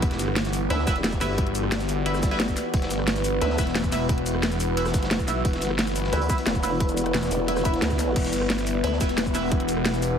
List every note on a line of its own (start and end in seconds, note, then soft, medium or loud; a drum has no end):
0.00 0.18 E1 loud
0.00 10.19 E3 medium
0.00 10.19 B3 medium
0.00 10.19 E4 medium
0.00 8.12 F#4 medium
0.00 2.71 G4 medium
0.00 10.19 B4 medium
0.00 0.16 F#5 medium
0.00 kick loud
0.00 closed hi-hat medium
0.11 2.87 D5 medium
0.11 snare medium
0.11 closed hi-hat soft
0.19 0.69 G1 loud
0.19 snare soft
0.19 closed hi-hat medium
0.19 shaker medium
0.28 cross-stick soft
0.36 snare loud
0.36 closed hi-hat medium
0.45 snare medium
0.45 closed hi-hat soft
0.45 shaker soft
0.53 closed hi-hat medium
0.53 open hi-hat medium
0.53 shaker medium
0.70 0.86 D2 medium
0.70 0.83 E4 medium
0.70 0.83 B4 medium
0.70 0.83 E5 medium
0.70 cross-stick soft
0.70 closed hi-hat medium
0.78 snare soft
0.87 1.20 E1 medium
0.87 0.95 E4 medium
0.87 0.95 B4 medium
0.87 0.95 E5 medium
0.87 kick loud
0.87 snare loud
0.87 closed hi-hat medium
0.87 shaker medium
0.95 snare soft
0.95 closed hi-hat soft
1.04 snare loud
1.04 closed hi-hat medium
1.13 kick medium
1.13 shaker soft
1.21 2.55 G1 loud
1.21 1.34 E4 medium
1.21 1.34 B4 medium
1.21 1.34 E5 medium
1.21 snare soft
1.21 open hi-hat medium
1.21 shaker medium
1.38 kick loud
1.38 closed hi-hat medium
1.47 closed hi-hat soft
1.55 closed hi-hat medium
1.55 shaker medium
1.64 cross-stick soft
1.72 snare loud
1.72 closed hi-hat medium
1.80 snare medium
1.80 closed hi-hat soft
1.80 shaker soft
1.89 closed hi-hat medium
1.89 open hi-hat medium
1.89 shaker medium
2.06 2.18 E4 medium
2.06 2.18 B4 medium
2.06 2.18 E5 medium
2.06 closed hi-hat medium
2.14 cross-stick medium
2.14 snare medium
2.14 shaker soft
2.23 kick loud
2.23 snare medium
2.23 closed hi-hat medium
2.23 shaker medium
2.31 2.39 E4 loud
2.31 2.39 B4 medium
2.31 2.39 E5 loud
2.31 snare medium
2.31 closed hi-hat soft
2.39 snare loud
2.39 closed hi-hat medium
2.48 kick medium
2.48 shaker soft
2.57 snare soft
2.57 closed hi-hat medium
2.57 open hi-hat medium
2.57 shaker medium
2.74 2.89 E1 loud
2.74 8.14 B4 medium
2.74 kick loud
2.74 closed hi-hat medium
2.82 5.58 F#5 medium
2.82 snare medium
2.82 closed hi-hat soft
2.90 3.40 G1 loud
2.90 snare soft
2.90 closed hi-hat medium
2.90 shaker medium
2.99 cross-stick soft
3.07 snare loud
3.07 closed hi-hat medium
3.16 snare medium
3.16 closed hi-hat soft
3.16 shaker soft
3.25 closed hi-hat medium
3.25 open hi-hat medium
3.25 shaker medium
3.41 3.57 D2 medium
3.41 3.54 E4 medium
3.41 3.54 B4 medium
3.41 3.54 E5 medium
3.41 cross-stick soft
3.41 closed hi-hat medium
3.50 snare soft
3.58 4.93 E1 loud
3.58 3.66 E4 medium
3.58 3.66 B4 medium
3.58 3.66 E5 medium
3.58 kick loud
3.58 snare medium
3.58 closed hi-hat medium
3.58 shaker medium
3.67 snare soft
3.67 closed hi-hat soft
3.75 snare loud
3.75 closed hi-hat medium
3.75 closed hi-hat loud
3.84 kick medium
3.84 shaker soft
3.92 4.05 E4 medium
3.92 4.05 B4 medium
3.92 4.05 E5 medium
3.92 snare soft
3.92 open hi-hat medium
3.92 shaker medium
4.09 kick loud
4.09 closed hi-hat medium
4.18 closed hi-hat soft
4.26 closed hi-hat medium
4.26 shaker medium
4.35 cross-stick soft
4.43 snare loud
4.43 closed hi-hat medium
4.52 snare medium
4.52 closed hi-hat soft
4.52 shaker soft
4.60 closed hi-hat medium
4.60 open hi-hat medium
4.60 shaker medium
4.77 4.90 E4 medium
4.77 4.90 B4 medium
4.77 4.90 E5 medium
4.77 closed hi-hat medium
4.86 cross-stick medium
4.86 snare medium
4.86 shaker soft
4.94 5.27 G1 loud
4.94 kick loud
4.94 snare medium
4.94 closed hi-hat medium
4.94 shaker medium
5.03 snare medium
5.03 closed hi-hat soft
5.11 snare loud
5.11 closed hi-hat medium
5.19 kick medium
5.19 shaker soft
5.28 5.43 B1 medium
5.28 5.40 E4 medium
5.28 5.40 B4 medium
5.28 5.40 E5 loud
5.28 snare soft
5.28 closed hi-hat medium
5.28 open hi-hat medium
5.28 shaker medium
5.45 5.60 E1 loud
5.45 kick loud
5.45 closed hi-hat medium
5.53 8.29 D5 medium
5.53 snare medium
5.53 closed hi-hat soft
5.62 6.11 G1 loud
5.62 snare soft
5.62 closed hi-hat medium
5.62 shaker medium
5.70 cross-stick soft
5.78 snare loud
5.78 closed hi-hat loud
5.78 closed hi-hat medium
5.87 snare medium
5.87 closed hi-hat soft
5.87 shaker soft
5.96 closed hi-hat medium
5.96 open hi-hat medium
5.96 shaker medium
6.04 snare medium
6.13 6.28 D2 loud
6.13 6.25 E4 medium
6.13 6.25 B4 medium
6.13 6.25 E5 loud
6.13 cross-stick soft
6.13 snare soft
6.13 closed hi-hat medium
6.21 closed hi-hat medium
6.30 6.37 E4 medium
6.30 6.37 B4 medium
6.30 6.37 E5 medium
6.30 kick loud
6.30 snare medium
6.30 closed hi-hat medium
6.30 shaker medium
6.38 snare soft
6.38 closed hi-hat soft
6.38 closed hi-hat medium
6.46 6.62 E1 loud
6.46 snare loud
6.46 closed hi-hat medium
6.55 kick medium
6.55 shaker soft
6.63 7.13 E1 medium
6.63 6.76 E4 medium
6.63 6.76 B4 medium
6.63 6.76 E5 medium
6.63 snare soft
6.63 open hi-hat medium
6.63 shaker medium
6.80 kick loud
6.80 closed hi-hat medium
6.89 closed hi-hat soft
6.89 shaker soft
6.97 closed hi-hat medium
6.97 shaker medium
7.06 cross-stick soft
7.06 closed hi-hat soft
7.14 7.30 E1 loud
7.14 snare loud
7.14 closed hi-hat loud
7.14 closed hi-hat medium
7.23 snare medium
7.23 closed hi-hat soft
7.23 shaker soft
7.31 7.81 E1 medium
7.31 closed hi-hat medium
7.31 open hi-hat medium
7.31 shaker medium
7.48 7.61 E4 medium
7.48 7.61 B4 medium
7.48 7.61 E5 medium
7.48 closed hi-hat loud
7.48 closed hi-hat medium
7.48 swell medium
7.56 cross-stick medium
7.56 snare medium
7.56 shaker soft
7.65 7.73 E4 medium
7.65 7.73 B4 medium
7.65 7.73 E5 medium
7.65 kick loud
7.65 closed hi-hat medium
7.65 shaker medium
7.74 snare soft
7.74 closed hi-hat soft
7.82 8.15 D2 loud
7.82 snare soft
7.82 snare loud
7.82 closed hi-hat medium
7.91 kick medium
7.91 snare soft
7.91 shaker soft
7.99 snare soft
7.99 closed hi-hat medium
7.99 open hi-hat medium
7.99 shaker medium
8.16 8.32 E1 loud
8.16 10.19 E4 medium
8.16 10.19 G4 medium
8.16 kick loud
8.16 closed hi-hat medium
8.16 crash medium
8.24 10.19 F#5 medium
8.24 snare medium
8.24 closed hi-hat soft
8.33 8.82 G1 loud
8.33 snare soft
8.33 closed hi-hat medium
8.33 shaker medium
8.41 cross-stick soft
8.50 snare loud
8.50 closed hi-hat medium
8.50 closed hi-hat loud
8.58 snare medium
8.58 closed hi-hat soft
8.58 shaker soft
8.67 closed hi-hat medium
8.67 open hi-hat medium
8.67 shaker medium
8.84 8.99 D2 loud
8.84 8.96 E4 medium
8.84 8.96 B4 medium
8.84 8.96 E5 loud
8.84 cross-stick soft
8.84 closed hi-hat loud
8.84 closed hi-hat medium
8.92 snare soft
9.00 10.19 E1 loud
9.00 9.09 E4 medium
9.00 9.09 B4 medium
9.00 9.09 E5 loud
9.00 kick loud
9.00 snare medium
9.00 closed hi-hat medium
9.00 shaker medium
9.09 snare soft
9.09 closed hi-hat soft
9.17 snare loud
9.17 closed hi-hat loud
9.26 kick medium
9.26 shaker soft
9.35 9.47 E4 medium
9.35 9.47 B4 medium
9.35 9.47 E5 loud
9.35 snare soft
9.35 open hi-hat medium
9.35 shaker medium
9.51 kick loud
9.51 closed hi-hat medium
9.60 closed hi-hat soft
9.68 closed hi-hat medium
9.68 shaker medium
9.77 cross-stick soft
9.85 snare loud
9.85 closed hi-hat medium
9.85 closed hi-hat loud
9.94 snare medium
9.94 closed hi-hat soft
9.94 shaker soft
10.02 closed hi-hat medium
10.02 open hi-hat medium
10.02 shaker medium